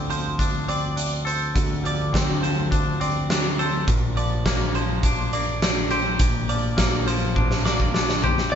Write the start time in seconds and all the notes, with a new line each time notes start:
Already playing: D2 D3 C4 F4 D5
0.10 F3 C5, closed hi-hat
0.39 D4, kick, closed hi-hat
0.68 C4 D5, closed hi-hat
0.96 D4, closed hi-hat
1.25 A4 C5, closed hi-hat
1.54 D2 D3, kick, closed hi-hat
1.84 F3 D5, closed hi-hat
2.13 C4, kick, snare, closed hi-hat
2.41 F3 C5, closed hi-hat
2.71 D4, kick, closed hi-hat
3.00 C4 D5, closed hi-hat
3.30 D4, snare, closed hi-hat
3.59 A4 C5, closed hi-hat
3.87 A#1 A#2, kick, closed hi-hat
4.16 F3 D5, closed hi-hat
4.46 A#3, kick, snare, closed hi-hat
4.75 F3 C5, closed hi-hat
5.03 D4, kick, closed hi-hat
5.33 A#3 D5, closed hi-hat
5.62 D4, snare, closed hi-hat
5.90 G4 C5, closed hi-hat
6.19 A#1 A#2, kick, closed hi-hat
6.49 F3 D5, closed hi-hat
6.77 A#3, kick, snare, closed hi-hat
7.06 F3 C5, closed hi-hat
7.36 D4, kick, high tom
7.51 snare
7.65 A#3 D5, snare
7.80 kick
7.94 D4, snare
8.09 snare
8.24 G4 C5, floor tom
8.38 snare
8.52 D5